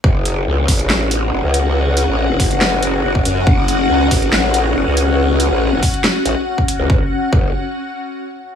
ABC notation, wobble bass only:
X:1
M:4/4
L:1/16
Q:1/4=140
K:F#m
V:1 name="Wobble bass" clef=bass
F,,,4 C,,2 A,,,6 F,,, C,,3- | C,,3 A,,,2 E,,, F,,,6 F,,,2 F,,2 | F,,,4 C,,2 A,,,6 F,,, C,,3- | C,,3 A,,,2 E,,, z4 A,,, z4 C,, |
F,,, z3 F,,,2 z8 z2 |]